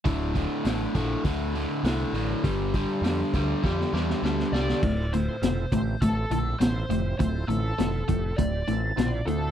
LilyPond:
<<
  \new Staff \with { instrumentName = "Lead electric guitar" } { \time 4/4 \key d \minor \tempo 4 = 101 r1 | r2. r8 d''8~ | d''8 c''4 c''8 a'8 a'8 c''4 | c''8 a'4. d''4. a'8 | }
  \new Staff \with { instrumentName = "Tonewheel organ" } { \time 4/4 \key d \minor r1 | r1 | <c' e' f' a'>8 <c' e' f' a'>8 <c' e' f' a'>8 <c' e' f' g'>8 <c' e' f' a'>8 <c' e' f' a'>8 <c' e' f' a'>8 <c' e' f' g'>8 | <c' e' f' a'>8 <c' e' f' a'>8 <c' e' f' a'>8 <c' e' f' g'>8 <c' e' f' g'>8 <c' e' f' a'>8 <c' e' f' c''>8 <c' e' f' c''>8 | }
  \new Staff \with { instrumentName = "Overdriven electric guitar" } { \clef bass \time 4/4 \key d \minor <d, a, d>8 <d, a, d>8 <d, a, d>8 <d, a, d>8 <d, a, d>8 <d, a, d>8 <d, a, d>8 <d, a, d>8 | <g, d g>8 <g, d g>8 <g, d g>8 <g, d g>8 <g, d g>8 <g, d g>8 <g, d g>8 <g, d g>8 | <d, a,>8 <d, a,>8 <d, b,>8 <d, a,>8 <d, a,>8 <d, a,>8 <d, b,>8 <d, a,>8 | <d, a,>8 <d, a,>8 <d, b,>8 <d, a,>8 <d, a,>8 <d, a,>8 <d, b,>8 <d, a,>8 | }
  \new Staff \with { instrumentName = "Picked electric bass" } { \clef bass \time 4/4 \key d \minor d,,4 a,,8 bes,,8 d,4 c,8 a,,8 | g,,4 f,8 d,8 f,8 e,8 d,8 c,8 | d,,4 f,,8 a,,8 a,,8 bes,,8 a,,8 f,,8 | d,,8 a,,8 f,,8 f,,8 d,,8 a,,8 bes,,8 d,8 | }
  \new DrumStaff \with { instrumentName = "Drums" } \drummode { \time 4/4 <hho bd>8 <hho bd>8 <hho sn>8 <hho bd>8 <hho bd>8 hho8 <hho sn>8 hho8 | <hho bd>8 <hho bd>8 <hho sn>8 <hho bd sn>8 <bd sn>16 sn16 sn16 sn16 sn16 sn16 sn16 sn16 | <cymc bd>8 hh8 <hh sn>8 <hh bd>8 <hh bd>8 hh8 <hh sn>8 hh8 | <hh bd>8 hh8 <hh sn>8 <hh bd>8 <hh bd>8 hh8 <hh sn>8 hh8 | }
>>